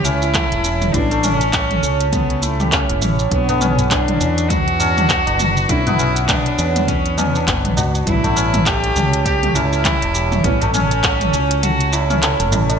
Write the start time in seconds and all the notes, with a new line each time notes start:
Already playing: C#2 E3 G3 A3 B3 C#4 A4 B4
0.04 C#4 E4, shaker
0.22 E4, shaker
0.34 A4, kick, clap, closed hi-hat, mid tom, shaker
0.52 E1, closed hi-hat
0.64 C#4, shaker
0.82 mid tom, shaker
0.93 A1 E3 G3 B3 C#4 D4, kick, closed hi-hat, shaker
1.11 A3, closed hi-hat, shaker
1.23 C#4 D4, mid tom, shaker
1.34 C#4
1.41 closed hi-hat, shaker
1.53 A4, kick, clap, closed hi-hat, shaker
1.71 closed hi-hat, mid tom
1.83 C#2 C#4, shaker
2.00 closed hi-hat, shaker
2.12 B3, kick, closed hi-hat, mid tom, shaker
2.30 closed hi-hat
2.42 A3 E4, shaker
2.60 G4, mid tom, shaker
2.72 C#4, kick, clap, closed hi-hat, shaker
2.89 E1 E4, closed hi-hat
3.02 A1 C#5, mid tom, shaker
3.19 shaker
3.30 B1 D3 F#3 B3, kick, closed hi-hat, shaker
3.34 C#5
3.48 B3, closed hi-hat, tabla na, tabla ge, shaker
3.61 C#4, mid tom, shaker
3.78 closed hi-hat, tabla ge, shaker
3.91 D4 B4, kick, clap, closed hi-hat, tabla na, shaker
4.08 closed hi-hat, mid tom
4.20 E2 C#4, tabla tin, shaker
4.38 closed hi-hat, shaker
4.50 F#4, kick, closed hi-hat, mid tom, tabla tin, shaker
4.68 closed hi-hat
4.80 C#4, tabla na, tabla ge, shaker
4.97 D4, mid tom, shaker
5.10 B4, kick, clap, closed hi-hat, shaker
5.27 F#1, closed hi-hat, tabla na
5.40 F#4, mid tom, shaker
5.57 shaker
5.68 B1 D3 F#3 B3 C#4 E4, kick, closed hi-hat, shaker
5.87 B3, closed hi-hat, mid tom, tabla na, tabla ge, shaker
5.99 C#4, shaker
6.16 closed hi-hat, shaker
6.29 D4 B4, kick, clap, closed hi-hat, mid tom, tabla na, shaker
6.46 closed hi-hat
6.59 E2 C#4, tabla tin, shaker
6.76 closed hi-hat, mid tom, shaker
6.88 C#4, kick, closed hi-hat, shaker
7.06 closed hi-hat
7.18 B3 C#4, mid tom, tabla na, shaker
7.35 D4, shaker
7.47 F#1 B4, kick, clap, closed hi-hat, shaker
7.65 closed hi-hat, mid tom
7.77 C#2 F#4, tabla na, tabla ge, shaker
7.95 tabla tin, shaker
8.05 A1 E3 G3 B3 E4, kick, closed hi-hat, mid tom, shaker
8.09 C#4
8.24 A3, closed hi-hat, tabla na, tabla ge, shaker
8.36 C#4, shaker
8.54 closed hi-hat, mid tom, tabla ge, shaker
8.66 G4 A4, kick, clap, closed hi-hat, tabla na, shaker
8.84 closed hi-hat
8.96 C#2 C#4, mid tom, tabla tin, shaker
9.13 closed hi-hat, shaker
9.25 G4, kick, closed hi-hat, tabla tin, shaker
9.43 closed hi-hat, mid tom
9.55 C#4 E4, tabla na, tabla ge, shaker
9.72 E4, shaker
9.85 A4, kick, clap, closed hi-hat, mid tom, shaker
10.02 E1, closed hi-hat, tabla na
10.14 G4, shaker
10.32 mid tom, shaker
10.44 A1 E3 G3 B3 C#4, kick, closed hi-hat, shaker
10.61 A3, closed hi-hat, tabla na, tabla ge, shaker
10.74 C#4, mid tom, shaker
10.91 closed hi-hat, shaker
11.04 A4, kick, clap, closed hi-hat, tabla na, shaker
11.21 closed hi-hat, mid tom, shaker
11.33 C#2 C#4, tabla tin, shaker
11.51 closed hi-hat, shaker
11.63 F#4, closed hi-hat, mid tom, shaker
11.81 closed hi-hat, shaker
11.92 E4, tabla na, shaker
12.10 C#4, mid tom, shaker
12.22 A3, clap, closed hi-hat, shaker
12.40 E1 A3, closed hi-hat, shaker
12.52 A1 E4, mid tom, tabla na, tabla ge, shaker
12.69 A3, closed hi-hat, tabla na, tabla tin, shaker